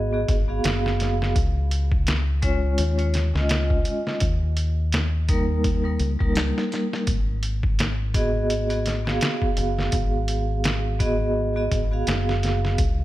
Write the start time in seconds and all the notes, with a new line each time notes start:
Already playing: G#1
0.13 B3 F#4 G#4 D#5
0.28 G#1, kick, closed hi-hat
0.48 B3 F#4 G#4 F5
0.64 F#1, snare, closed hi-hat
0.86 snare
1.00 snare, closed hi-hat
1.22 snare
1.36 C#2, kick, closed hi-hat
1.71 closed hi-hat
1.92 kick
2.07 snare, closed hi-hat
2.42 G#3 C#4 F4 C#5, kick, closed hi-hat
2.78 D#2, closed hi-hat
2.98 G#3 C#4 F4 C#5, closed hi-hat
3.14 snare, closed hi-hat
3.34 C#2 G#3 C#4 F4 D#5, snare
3.49 snare, closed hi-hat
3.70 kick
3.85 closed hi-hat
4.07 snare
4.20 D#2, kick, closed hi-hat
4.57 closed hi-hat
4.92 snare, closed hi-hat
5.29 G3 A#3 D#4 A#4, kick, closed hi-hat
5.64 kick, closed hi-hat
5.84 G3 A#3 D#4 A#4
5.99 C#2, closed hi-hat
6.19 C#2 G3 A#3 D#4 A#4, kick
6.35 snare, closed hi-hat
6.58 snare
6.72 snare, closed hi-hat
6.93 snare
7.07 G#1, kick, closed hi-hat
7.43 closed hi-hat
7.63 kick
7.79 snare, closed hi-hat
8.14 B3 F#4 G#4 D#5, kick, closed hi-hat
8.50 closed hi-hat
8.70 B3 F#4 G#4 D#5, closed hi-hat
8.86 snare, closed hi-hat
9.05 B3 F#4 G#4 F5, snare
9.21 snare, closed hi-hat
9.42 kick
9.57 F#1, closed hi-hat
9.79 snare
9.92 G#1, kick, closed hi-hat
10.28 closed hi-hat
10.64 snare, closed hi-hat
10.99 B3 F#4 G#4 D#5, kick, closed hi-hat
11.56 B3 F#4 G#4 D#5
11.72 G#1, kick, closed hi-hat
11.91 B3 F#4 G#4 F5
12.07 F#1, snare, closed hi-hat
12.29 snare
12.43 snare, closed hi-hat
12.65 snare
12.78 C#2, kick, closed hi-hat